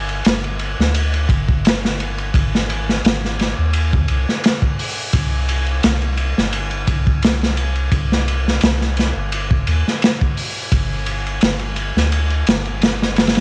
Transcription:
Already playing: sub bass G1
0.09 ride
0.25 sub bass G1, snare, ride
0.44 ride
0.59 ride
0.79 sub bass D2, snare
0.95 ride
1.14 ride
1.29 sub bass G1, kick, ride
1.49 kick
1.65 snare, ride
1.85 snare
2.00 ride
2.18 ride
2.34 sub bass G#1, kick, ride
2.55 snare
2.70 ride
2.89 snare
3.04 sub bass G#1, snare, ride
3.25 snare
3.39 snare, ride
3.58 sub bass D#2
3.73 ride
3.93 kick
4.08 sub bass C2, ride
4.29 snare
4.44 snare, ride
4.62 kick
4.79 open hi-hat
5.13 sub bass C2, kick, ride
5.49 ride
5.67 ride
5.83 sub bass C2, snare, ride
6.02 ride
6.17 ride
6.38 sub bass G1, snare
6.53 ride
6.71 ride
6.87 sub bass C2, kick, ride
7.07 kick
7.22 snare, ride
7.43 snare
7.57 ride
7.76 ride
7.92 sub bass C2, kick, ride
8.12 snare
8.28 ride
8.48 snare
8.61 sub bass C2, snare, ride
8.81 snare
8.97 snare, ride
9.16 sub bass G1
9.32 ride
9.51 kick
9.67 sub bass D#2, ride
9.88 snare
10.02 snare, ride
10.21 kick
10.37 open hi-hat
10.72 sub bass G1, kick, ride
11.06 ride
11.26 ride
11.41 sub bass G1, snare, ride
11.59 ride
11.76 ride
11.96 sub bass D2, snare
12.12 ride
12.30 ride
12.47 sub bass G1, snare, ride
12.65 ride
12.81 snare, ride
13.02 snare
13.16 snare, ride
13.27 snare, ride
13.35 snare, ride

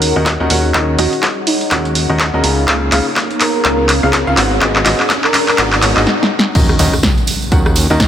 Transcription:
Already playing: analog synth bass D#2, upright piano D#3 C#4 F#4 A#4 F#5, ambient pad D#4 G#4 C#5 F#5, digital synth lead A#4, riser
0.02 closed hi-hat, open hi-hat
0.16 analog synth bass D#2, upright piano D#3 C#4 F#4 A#4 D#5
0.26 kick, snare, clap, closed hi-hat
0.40 analog synth bass D#2, upright piano D#3 C#4 F#4 A#4 D#5
0.50 analog synth bass D#2, upright piano D#3 C#4 F#4 A#4 F#5, open hi-hat
0.74 analog synth bass D#2, upright piano D#3 C#4 F#4 A#4 D#5, kick, clap, closed hi-hat
0.98 analog synth bass D#2, upright piano D#3 C#4 F#4 A#4 D#5, digital synth lead F#4, closed hi-hat, open hi-hat
1.13 closed hi-hat
1.23 kick, snare, clap, closed hi-hat
1.47 digital synth lead D#4, closed hi-hat, open hi-hat
1.61 digital synth lead D#4, closed hi-hat
1.71 analog synth bass D#2, upright piano D#3 C#4 F#4 A#4 F#5, kick, clap, closed hi-hat
1.85 closed hi-hat
1.95 closed hi-hat, open hi-hat
2.10 analog synth bass D#2, upright piano D#3 C#4 F#4 A#4 D#5
2.19 kick, snare, clap, closed hi-hat
2.34 analog synth bass D#2, upright piano C#3 C#4 F#4 A#4 D#5
2.44 analog synth bass C#2, upright piano C#3 C#4 F4 G#4 A#5, ambient pad D#4, closed hi-hat, open hi-hat
2.55 ambient pad G#4
2.68 analog synth bass C#2, upright piano C#3 C#4 F4 G#4 F5, kick, clap, closed hi-hat
2.83 ambient pad C#5
2.92 analog synth bass C#2, upright piano C#3 C#4 F4 G#4 F5, clap, closed hi-hat, open hi-hat
3.16 kick, snare, clap, closed hi-hat
3.22 ambient pad F5
3.31 closed hi-hat
3.40 digital synth lead A#4, clap, closed hi-hat, open hi-hat
3.65 analog synth bass C#2, upright piano C#3 C#4 F4 G#4 A#5, kick, clap, closed hi-hat
3.89 clap, closed hi-hat, open hi-hat
4.03 analog synth bass C#2, upright piano C#3 C#4 F4 G#4 F5
4.13 kick, snare, clap, closed hi-hat
4.27 analog synth bass C#2, upright piano C#4 F4 G#4 F5
4.37 analog synth bass G#1, upright piano G#2 B3 F#4 G#4 F#5, clap, closed hi-hat, open hi-hat
4.61 analog synth bass G#1, upright piano G#2 B3 F#4 G#4 D#5, kick, clap, closed hi-hat
4.76 clap
4.86 analog synth bass G#1, upright piano G#2 B3 F#4 G#4 D#5, snare, clap, closed hi-hat, open hi-hat
5.00 clap
5.10 kick, snare, clap, closed hi-hat
5.24 digital synth lead A#4, clap
5.34 digital synth lead A#4, ambient pad F#5, clap, closed hi-hat, open hi-hat
5.48 digital synth lead A#4, clap, closed hi-hat
5.58 analog synth bass G#1, upright piano G#2 B3 F#4 G#4 F#5, kick, clap, closed hi-hat, swell
5.72 clap, closed hi-hat
5.82 analog synth bass G#1, upright piano G#2 B3 F#4 G#4 C#5, clap, closed hi-hat, open hi-hat
5.97 analog synth bass G#1, upright piano G#2 B3 F#4 G#4 D#5, clap
6.07 snare
6.23 snare
6.39 snare
6.55 analog synth bass D#2, upright piano D#3 C#4 F#4 A#4 D#5, kick, closed hi-hat, crash, tambourine, impact
6.69 cross-stick, tambourine
6.79 analog synth bass D#2, upright piano D#3 C#4 F#4 A#4 D#5, closed hi-hat, open hi-hat, tambourine
6.93 cross-stick, tambourine
7.03 kick, snare, closed hi-hat, tambourine
7.18 closed hi-hat, tambourine
7.27 closed hi-hat, open hi-hat, tambourine
7.42 tambourine
7.52 analog synth bass D#2, upright piano D#3 C#4 F#4 A#4 F#5, kick, closed hi-hat, tambourine
7.66 cross-stick, tambourine
7.76 closed hi-hat, open hi-hat, tambourine
7.90 analog synth bass D#2, upright piano D#3 C#4 F#4 A#4 D#5, tambourine
8.00 kick, snare, closed hi-hat, tambourine

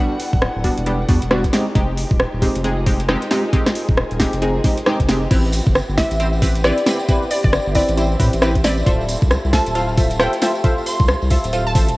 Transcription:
Already playing: synth stab G3 B3 D4 F#4, violin section G3 B3 D4 F#5, analog synth pad E4 A4 D5
0.20 open hi-hat
0.33 sub bass D1, kick
0.42 cross-stick
0.55 sub bass D1
0.64 synth stab G3 B3 D4 F#4, kick, open hi-hat
0.78 sub bass E1, closed hi-hat
0.86 synth stab G3 B3 D4 G4, closed hi-hat
1.09 sub bass E2, synth stab G3 B3 D4 F#4, kick, open hi-hat
1.22 sub bass E1, closed hi-hat
1.31 synth stab G3 B3 D4 F#4, cross-stick
1.44 kick, closed hi-hat
1.53 synth stab G#3 C4 D#4 G4, violin section G#3 C4 D#4 G4, analog synth pad F4, snare, open hi-hat
1.75 sub bass F1, synth stab G#3 C4 D#4 G4, kick, closed hi-hat
1.98 open hi-hat
2.03 analog synth pad D#5
2.11 sub bass D#1, kick
2.20 cross-stick
2.31 sub bass D#1, analog synth pad A#4
2.42 synth stab G#3 C4 D#4 G4, kick, open hi-hat
2.56 sub bass F1, closed hi-hat
2.64 synth stab G#3 C4 D#4 G#4, closed hi-hat
2.86 synth stab G#3 C4 D#4 G4, kick, open hi-hat
3.00 closed hi-hat
3.09 synth stab G#3 C4 D#4 G4, cross-stick
3.22 closed hi-hat
3.31 synth stab G#3 C4 D#4 G4, violin section G#4, snare, open hi-hat
3.53 synth stab G#3 C4 D#4 G4, kick, closed hi-hat
3.67 cross-stick, snare
3.75 open hi-hat
3.89 sub bass D#1, kick
3.97 cross-stick
4.11 sub bass D#1, closed hi-hat
4.20 synth stab G#3 C4 D#4 G4, kick, snare, open hi-hat
4.33 sub bass F1, closed hi-hat
4.42 synth stab G#3 C4 D#4 G#4, closed hi-hat
4.64 synth stab G#3 C4 D#4 G4, kick, open hi-hat
4.77 closed hi-hat
4.86 synth stab G#3 C4 D#4 G4, cross-stick
5.00 sub bass F1, kick, closed hi-hat
5.08 synth stab G#3 C4 D#4 G4, snare, open hi-hat
5.31 sub bass A1, violin section B3 E4 G4, synth stab C4 E4 G4 B4, analog synth pad G4, kick, closed hi-hat, tambourine, crash
5.45 tambourine
5.52 open hi-hat, tambourine
5.61 analog synth pad C6
5.66 sub bass G1, kick, tambourine
5.75 cross-stick, tambourine
5.89 sub bass G1, tambourine
5.97 synth stab C4 E4 G4 B4, synth pluck E5, kick, snare, open hi-hat, tambourine
6.11 sub bass A1, closed hi-hat, tambourine
6.20 synth stab C4 E4 G4 C5, closed hi-hat, tambourine
6.33 tambourine
6.42 synth stab C4 E4 G4 B4, kick, open hi-hat, tambourine
6.55 closed hi-hat, tambourine
6.64 synth stab C4 E4 G4 B4, synth pluck D5, cross-stick, tambourine
6.78 closed hi-hat, tambourine
6.84 synth stab C4 E4 G4 B4, analog synth pad E5, snare, open hi-hat, tambourine
6.99 tambourine
7.08 synth stab C4 E4 G4 B4, kick, closed hi-hat, tambourine
7.22 tambourine
7.30 synth pluck D5, open hi-hat, tambourine
7.44 sub bass G1, synth pluck D5, kick, tambourine
7.53 cross-stick, tambourine
7.66 sub bass G1, tambourine
7.75 synth stab C4 E4 G4 B4, synth pluck D5, kick, open hi-hat, tambourine
7.88 sub bass A1, closed hi-hat, tambourine
7.97 synth stab C4 E4 G4 C5, closed hi-hat, tambourine
8.12 tambourine
8.20 sub bass A2, synth stab C4 E4 G4 B4, kick, open hi-hat, tambourine
8.33 sub bass A1, closed hi-hat, tambourine
8.42 synth stab C4 E4 G4 B4, cross-stick, tambourine
8.55 kick, closed hi-hat, tambourine
8.64 synth stab C4 E4 G4 B4, synth pluck D5, snare, open hi-hat, tambourine
8.77 tambourine
8.86 sub bass D1, violin section A3 F4, synth stab F4 A4 C5 E5, kick, closed hi-hat, tambourine
9.00 tambourine
9.09 open hi-hat, tambourine
9.22 sub bass C2, kick, tambourine
9.31 cross-stick, tambourine
9.44 sub bass C2, tambourine
9.53 synth stab F4 A4 C5 E5, synth pluck A5, kick, snare, open hi-hat, tambourine
9.66 sub bass D1, closed hi-hat, tambourine
9.75 synth stab F4 A4 C5 F5, closed hi-hat, tambourine
9.89 tambourine
9.97 synth stab F4 A4 C5 E5, kick, open hi-hat, tambourine
10.10 closed hi-hat, tambourine
10.20 synth stab F4 A4 C5 E5, synth pluck G5, cross-stick, tambourine
10.33 closed hi-hat, tambourine
10.42 synth stab F4 A4 C5 E5, snare, open hi-hat, tambourine
10.55 tambourine
10.64 synth stab F4 A4 C5 E5, kick, closed hi-hat, tambourine
10.78 tambourine
10.86 synth pluck C6, open hi-hat, tambourine
11.00 sub bass C2, kick
11.08 cross-stick, tambourine
11.22 sub bass C2, tambourine
11.30 synth stab F4 A4 C5 E5, kick, open hi-hat, tambourine
11.44 sub bass D1, closed hi-hat, tambourine
11.53 synth stab F4 A4 C5 F5, closed hi-hat, tambourine
11.67 synth pluck A5, tambourine
11.75 sub bass A1, synth stab F4 A4 C5 E5, kick, open hi-hat, tambourine
11.88 sub bass D1, closed hi-hat, tambourine

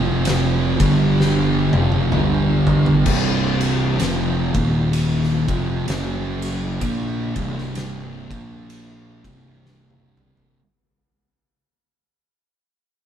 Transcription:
Already playing: fingered electric bass F1, distorted electric guitar F2 C3 F3
0.25 snare, ride
0.79 fingered electric bass G1, distorted electric guitar G2 D3 G3, kick, ride
1.20 snare
1.72 fingered electric bass F1, distorted electric guitar F2 C3 F3, high tom
1.92 high tom
2.11 fingered electric bass G1, distorted electric guitar G2 D3 G3, mid tom
2.67 floor tom
2.86 floor tom
3.05 fingered electric bass C1, distorted electric guitar C2 G2 C3, kick, crash
3.61 ride
3.99 fingered electric bass F1, distorted electric guitar F2 C3 F3, snare, ride
4.54 fingered electric bass D#1, distorted electric guitar D#2 A#2 D#3, kick, ride
4.93 ride
5.23 snare
5.48 fingered electric bass F1, distorted electric guitar F2 C3 F3, kick, ride
5.87 fingered electric bass F#1, distorted electric guitar F#2 C#3 F#3, snare, ride
6.42 ride
6.81 fingered electric bass A#1, distorted electric guitar A#2 F3 A#3, kick, ride
7.36 fingered electric bass C1, distorted electric guitar C2 G2 C3, kick, ride
7.58 snare
7.75 snare, ride
8.29 fingered electric bass A#1, distorted electric guitar A#2 F3 A#3, kick, ride
8.70 ride
9.24 fingered electric bass C1, distorted electric guitar C2 G2 C3, kick, ride
9.66 snare
9.90 high tom
10.17 mid tom
10.37 floor tom

